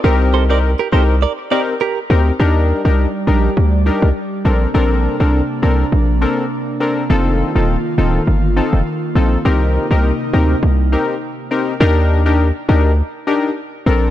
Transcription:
0.04 0.75 C2 loud
0.04 0.46 C4 medium
0.04 0.46 D#4 medium
0.04 0.46 G4 medium
0.04 0.15 G4 medium
0.04 0.46 A#4 loud
0.04 0.14 A#4 medium
0.34 0.44 A4 medium
0.34 0.43 C5 medium
0.49 0.71 C4 medium
0.49 0.71 D#4 medium
0.49 0.71 G4 medium
0.49 0.71 A#4 medium
0.49 0.58 A#4 medium
0.49 0.58 D5 medium
0.79 0.88 G4 medium
0.79 0.87 A#4 medium
0.92 1.26 C2 medium
0.92 1.15 C4 medium
0.92 1.15 D#4 medium
0.92 1.15 G4 medium
0.92 1.03 A4 medium
0.92 1.15 A#4 medium
0.92 1.02 C5 medium
1.22 1.32 A#4 medium
1.22 1.32 D5 medium
1.51 1.74 C4 medium
1.51 1.74 D#4 medium
1.51 1.74 G4 medium
1.51 1.74 A#4 medium
1.51 1.62 A#4 medium
1.51 1.61 D5 medium
1.81 1.99 G4 medium
1.81 1.98 A#4 medium
2.10 2.32 D2 medium
2.10 2.33 C4 medium
2.10 2.33 D#4 medium
2.10 2.33 G4 medium
2.10 2.33 A#4 medium
2.39 2.73 D#2 loud
2.39 4.43 G3 medium
2.39 2.81 D4 medium
2.39 2.81 D#4 medium
2.39 4.43 G4 medium
2.39 2.81 G4 medium
2.39 2.81 A#4 medium
2.39 4.43 D5 medium
2.85 3.07 C2 medium
2.85 3.06 D4 medium
2.85 3.06 D#4 medium
2.85 3.06 G4 medium
2.85 3.06 A#4 medium
3.27 3.49 A#1 medium
3.27 3.50 D4 medium
3.27 3.50 D#4 medium
3.27 3.50 G4 medium
3.27 3.50 A#4 medium
3.57 3.90 D2 medium
3.86 4.09 D4 medium
3.86 4.09 D#4 medium
3.86 4.09 G4 medium
3.86 4.09 A#4 medium
4.02 4.12 C2 medium
4.45 4.67 A#1 medium
4.45 7.07 C3 medium
4.45 9.41 A#3 medium
4.45 4.68 C4 medium
4.45 7.07 D4 medium
4.45 4.68 D4 medium
4.45 4.68 A4 medium
4.45 4.68 A#4 medium
4.74 5.08 A#1 loud
4.74 5.16 C4 medium
4.74 5.16 D4 medium
4.74 5.16 A4 medium
4.74 5.16 A#4 medium
5.20 5.42 C2 medium
5.20 5.41 C4 medium
5.20 5.41 D4 medium
5.20 5.41 A4 medium
5.20 5.42 A#4 medium
5.62 5.84 C2 medium
5.62 5.85 C4 medium
5.62 5.85 D4 medium
5.62 5.86 A4 medium
5.62 5.86 A#4 medium
5.92 6.26 A#1 loud
6.21 6.44 C4 medium
6.21 6.44 D4 medium
6.21 6.44 A4 medium
6.21 6.45 A#4 medium
6.80 7.03 C4 medium
6.80 7.03 D4 medium
6.80 7.03 A4 medium
6.80 7.03 A#4 medium
7.10 7.43 F1 loud
7.10 9.43 D#3 medium
7.10 7.51 C4 medium
7.10 7.52 D#4 medium
7.10 7.52 F4 medium
7.10 9.43 F4 medium
7.10 7.52 A4 medium
7.55 7.77 D#1 loud
7.55 7.77 C4 medium
7.55 7.77 D#4 medium
7.55 7.77 F4 medium
7.55 7.77 A4 medium
7.98 8.20 D1 loud
7.98 8.21 C4 medium
7.98 8.21 D#4 medium
7.98 8.21 F4 medium
7.98 8.21 A4 medium
8.27 8.61 G1 medium
8.56 8.79 C4 medium
8.56 8.80 D#4 medium
8.56 8.80 F4 medium
8.56 8.80 A4 medium
8.73 8.83 F1 medium
9.15 9.37 A#1 medium
9.15 9.38 C4 medium
9.15 9.39 D#4 medium
9.15 9.39 F4 medium
9.15 9.39 A4 medium
9.45 9.79 C2 loud
9.45 11.78 C3 medium
9.45 11.78 A#3 medium
9.45 9.87 C4 medium
9.45 11.78 D#4 medium
9.45 9.87 D#4 medium
9.45 9.87 G4 medium
9.45 9.87 A#4 medium
9.91 10.12 C2 medium
9.91 10.12 C4 medium
9.91 10.12 D#4 medium
9.91 10.12 G4 medium
9.91 10.12 A#4 medium
10.33 10.55 D2 medium
10.33 10.56 C4 medium
10.33 10.56 D#4 medium
10.33 10.56 G4 medium
10.33 10.56 A#4 medium
10.63 10.96 C2 loud
10.92 11.15 C4 medium
10.92 11.15 D#4 medium
10.92 11.15 G4 medium
10.92 11.15 A#4 medium
11.51 11.74 C4 medium
11.51 11.74 D#4 medium
11.51 11.74 G4 medium
11.51 11.74 A#4 medium
11.80 12.52 D#2 loud
11.80 12.22 D4 medium
11.80 12.22 D#4 medium
11.80 12.22 G4 medium
11.80 12.22 A#4 loud
12.26 12.47 D4 medium
12.26 12.47 D#4 medium
12.26 12.47 G4 medium
12.26 12.47 A#4 medium
12.69 13.02 D2 medium
12.69 12.91 D4 medium
12.69 12.92 D#4 medium
12.69 12.92 G4 medium
12.69 12.92 A#4 medium
13.27 13.50 D4 medium
13.27 13.50 D#4 medium
13.27 13.50 G4 medium
13.27 13.50 A#4 medium
13.86 14.10 A#1 loud
13.86 14.09 C4 medium
13.86 14.09 D4 medium
13.86 14.09 A4 medium
13.86 14.09 A#4 medium

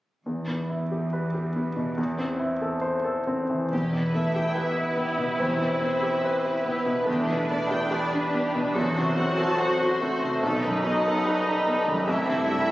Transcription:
0.26 1.94 E2 soft
0.26 3.48 E2 soft
0.47 0.83 B3 soft
0.69 1.04 E4 soft
0.92 1.26 G4 soft
1.13 1.47 B4 soft
1.34 1.68 G4 soft
1.56 1.90 B3 soft
1.76 1.98 B2 soft
1.97 3.68 E2 medium
2.18 2.52 C4 soft
2.39 2.74 E4 soft
2.62 2.96 A4 soft
2.81 3.18 C5 soft
3.05 3.41 A4 soft
3.27 3.63 C4 soft
3.50 3.72 E3 soft
3.71 4.40 E1 soft
3.71 5.36 E2 soft
3.71 4.43 E2 soft
3.71 7.03 E4 soft
3.71 7.03 G4 soft
3.71 3.92 G4 soft
3.71 8.71 B4 soft
3.71 8.72 B4 soft
3.93 4.27 B2 soft
3.93 4.15 B4 soft
4.14 4.57 A3 soft
4.14 4.48 B3 soft
4.14 4.35 E5 soft
4.35 4.69 G4 soft
4.35 4.56 G5 soft
4.55 5.41 B3 soft
4.55 4.90 B4 soft
4.55 4.76 E5 soft
4.76 5.10 E4 soft
4.76 4.98 B4 soft
4.97 5.31 B3 soft
4.97 5.19 G4 soft
5.18 5.39 B2 soft
5.18 5.39 B4 soft
5.39 6.07 E1 soft
5.39 6.10 E2 soft
5.39 7.03 E2 soft
5.39 6.64 C4 medium
5.39 5.59 G4 soft
5.60 5.94 B2 soft
5.60 5.82 B4 soft
5.81 6.15 B3 soft
5.81 6.03 C5 soft
6.02 6.36 G4 soft
6.02 6.24 E5 soft
6.23 6.57 B4 soft
6.23 6.44 C5 soft
6.44 6.78 E4 soft
6.44 6.65 B4 soft
6.64 7.08 B3 medium
6.64 6.99 B3 soft
6.64 6.86 G4 soft
6.86 7.07 B2 soft
6.86 7.07 B4 soft
7.06 7.75 E1 soft
7.06 7.78 E2 soft
7.06 8.72 E2 medium
7.06 7.92 A3 medium
7.06 8.72 D4 soft
7.06 7.26 G4 soft
7.27 7.63 B2 soft
7.27 7.49 B4 soft
7.49 7.84 B3 soft
7.49 7.71 D5 soft
7.70 8.04 G4 soft
7.70 7.91 G5 soft
7.91 8.77 G3 medium
7.91 8.26 B4 soft
7.91 8.12 D5 soft
8.12 8.46 D4 soft
8.12 8.33 B4 soft
8.33 8.67 B3 soft
8.33 8.54 G4 soft
8.53 8.76 B2 soft
8.53 8.75 B4 soft
8.74 9.42 E1 medium
8.74 9.45 E2 medium
8.74 10.39 E2 medium
8.74 10.01 F#3 medium
8.74 10.26 C4 soft
8.74 10.42 F#4 medium
8.74 8.94 A4 soft
8.74 12.07 A4 soft
8.74 10.39 C5 medium
8.96 9.30 C3 soft
8.96 9.17 C5 soft
9.17 9.52 C4 soft
9.17 9.38 F#5 soft
9.37 9.71 A4 soft
9.37 9.58 A5 soft
9.58 9.93 C5 soft
9.58 9.79 F#5 soft
9.79 10.14 F#4 soft
9.79 10.00 C5 soft
10.00 10.42 A3 medium
10.00 10.35 C4 soft
10.00 10.21 A4 soft
10.21 10.43 C3 soft
10.21 10.42 C5 soft
10.42 11.09 B1 medium
10.42 12.03 B1 medium
10.42 11.12 B2 soft
10.42 12.07 D#4 medium
10.42 12.04 D#4 medium
10.42 10.62 A4 medium
10.42 12.04 B4 medium
10.64 10.97 F#2 soft
10.64 10.84 B4 soft
10.84 11.22 F#3 medium
10.84 11.18 B3 soft
10.84 11.05 D#5 soft
11.03 11.39 A4 soft
11.03 11.25 F#5 soft
11.24 12.08 G3 medium
11.24 11.59 B4 soft
11.24 11.45 D#5 soft
11.45 11.79 D#4 soft
11.45 11.66 B4 soft
11.66 12.00 B3 soft
11.66 11.86 A4 soft
11.86 12.08 F#2 soft
11.86 12.07 B4 soft
12.07 12.71 C2 soft
12.07 12.71 C2 medium
12.07 12.71 C3 soft
12.07 12.71 A3 medium
12.07 12.71 E4 soft
12.07 12.26 G4 soft
12.07 12.71 G4 soft
12.07 12.71 E5 soft
12.28 12.61 G2 soft
12.28 12.48 C5 soft
12.48 12.71 G3 soft
12.48 12.69 E5 soft

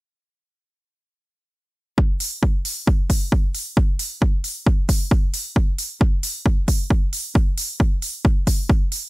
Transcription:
1.98 kick loud
2.20 open hi-hat loud
2.43 kick loud
2.65 open hi-hat medium
2.87 kick loud
3.10 kick medium
3.10 open hi-hat loud
3.32 kick loud
3.55 open hi-hat medium
3.77 kick loud
3.99 open hi-hat loud
4.22 kick loud
4.44 open hi-hat medium
4.66 kick loud
4.89 kick medium
4.89 open hi-hat loud
5.11 kick loud
5.34 open hi-hat medium
5.56 kick loud
5.78 open hi-hat loud
6.01 kick loud
6.23 open hi-hat loud
6.46 kick loud
6.68 kick medium
6.68 open hi-hat loud
6.90 kick loud
7.13 open hi-hat medium
7.35 kick loud
7.58 open hi-hat loud
7.80 kick loud
8.02 open hi-hat medium
8.25 kick loud
8.47 kick medium
8.47 open hi-hat loud
8.70 kick loud
8.92 open hi-hat medium

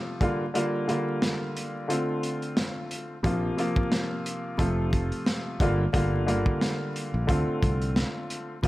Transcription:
0.00 0.20 C3 medium
0.00 0.20 F3 medium
0.00 0.21 A3 medium
0.00 0.21 F4 loud
0.21 0.42 D3 loud
0.21 0.43 G3 medium
0.21 0.43 A#3 medium
0.21 0.43 F4 loud
0.21 kick loud
0.21 closed hi-hat medium
0.54 0.86 D3 loud
0.54 0.86 G3 medium
0.54 0.86 A#3 medium
0.54 0.86 F4 loud
0.54 closed hi-hat loud
0.88 1.86 D3 medium
0.88 1.89 G3 medium
0.88 1.90 A#3 medium
0.88 1.88 F4 loud
0.88 closed hi-hat medium
1.22 snare loud
1.22 closed hi-hat medium
1.57 closed hi-hat medium
1.88 3.14 D3 medium
1.88 3.14 A3 medium
1.88 3.15 C4 medium
1.88 3.15 F4 loud
1.88 closed hi-hat loud
2.23 closed hi-hat medium
2.42 closed hi-hat soft
2.57 snare loud
2.57 closed hi-hat medium
2.91 closed hi-hat medium
3.23 3.50 A#1 loud
3.23 3.55 C3 medium
3.23 3.55 F3 loud
3.23 3.56 A#3 medium
3.23 3.56 F4 loud
3.23 kick loud
3.23 closed hi-hat loud
3.57 4.56 C3 medium
3.57 4.57 F3 medium
3.57 4.59 A#3 loud
3.57 4.58 F4 loud
3.57 closed hi-hat medium
3.76 kick loud
3.92 snare loud
3.92 closed hi-hat medium
4.26 closed hi-hat medium
4.57 5.11 F1 loud
4.57 5.59 C3 medium
4.57 5.60 F3 medium
4.57 5.60 A3 loud
4.57 5.60 F4 loud
4.57 kick loud
4.57 closed hi-hat loud
4.93 kick medium
4.93 closed hi-hat medium
5.12 closed hi-hat soft
5.26 snare loud
5.26 closed hi-hat medium
5.60 5.86 G1 loud
5.60 5.82 D3 loud
5.60 5.82 G3 medium
5.60 5.82 A#3 medium
5.60 5.83 F4 loud
5.60 kick loud
5.60 closed hi-hat medium
5.93 6.46 G1 loud
5.93 6.25 D3 loud
5.93 6.25 G3 medium
5.93 6.25 A#3 medium
5.93 6.26 F4 loud
5.93 kick loud
5.93 closed hi-hat loud
6.26 7.26 D3 medium
6.26 7.28 G3 medium
6.26 7.29 A#3 medium
6.26 7.27 F4 loud
6.26 closed hi-hat medium
6.46 kick loud
6.61 snare loud
6.61 closed hi-hat medium
6.96 closed hi-hat medium
7.14 7.25 A#1 medium
7.27 7.43 D2 loud
7.27 8.53 D3 loud
7.27 8.54 A3 medium
7.27 8.54 C4 medium
7.27 8.54 F4 loud
7.27 kick loud
7.27 closed hi-hat loud
7.48 muted fretless electric bass stroke medium
7.62 8.03 C2 loud
7.62 kick medium
7.62 closed hi-hat medium
7.82 closed hi-hat soft
7.96 snare loud
7.96 closed hi-hat medium
8.30 closed hi-hat medium
8.62 8.68 A#1 loud
8.62 8.68 C3 medium
8.62 8.68 F3 loud
8.62 8.68 A#3 medium
8.62 8.68 F4 loud
8.62 kick loud
8.62 closed hi-hat loud

